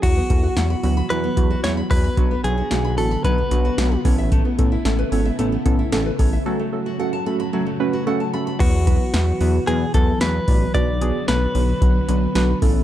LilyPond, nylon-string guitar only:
\new Staff \with { instrumentName = "Nylon-string guitar" } { \time 4/4 \key b \minor \tempo 4 = 112 fis16 b16 r16 fis'16 fis''16 b''16 b''16 b''16 fis16 b16 r16 fis'16 fis''16 b''16 b''16 b''16 | fis16 b16 r16 fis'16 fis''16 b''16 b''16 b''16 fis16 b16 r16 fis'16 fis''16 b''16 cis''16 e''16 | a16 b16 r16 e'16 a'16 b'16 cis''16 e''16 a16 b16 r16 e'16 a'16 b'16 cis''16 e''16 | fis16 a16 r16 fis'16 fis''16 a''16 b''16 b''16 fis16 a16 r16 fis'16 fis''16 a''16 b''16 b''16 |
r1 | r1 | }